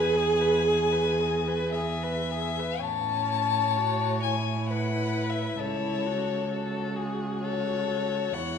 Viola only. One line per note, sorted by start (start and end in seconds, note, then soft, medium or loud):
0.00 1.68 G#4 medium
2.81 3.80 C#4 soft
3.78 4.25 F#4 medium
4.24 5.60 E4 medium
5.61 6.08 E4 medium
6.06 6.50 F#4 medium
6.52 8.36 F#4 medium
8.35 8.58 E4 soft